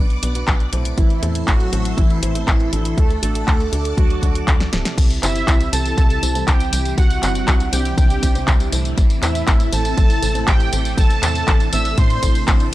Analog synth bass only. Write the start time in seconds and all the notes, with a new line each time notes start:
Already playing: B1
0.23 B1
0.48 B1
0.73 B1
0.98 A1
1.23 E2
1.48 A1
1.73 A1
1.98 A1
2.22 A1
2.48 A1
2.73 A1
2.98 D2
3.23 A1
3.48 D2
3.72 D2
3.97 D2
4.22 D2
4.48 D2
4.73 D1
4.98 C2
5.23 G1
5.48 C2
5.73 C2
5.98 C2
6.23 C2
6.48 C2
6.73 C2
6.98 C2
7.23 G1
7.48 C2
7.73 C2
7.98 C2
8.23 C2
8.48 C2
8.73 C2
8.98 A1
9.22 E2
9.48 A1
9.73 A1
9.97 A1
10.23 A1
10.48 A1
10.73 A1
10.98 A1
11.23 E2
11.48 A1
11.73 A1
11.98 A2
12.23 A1
12.48 A1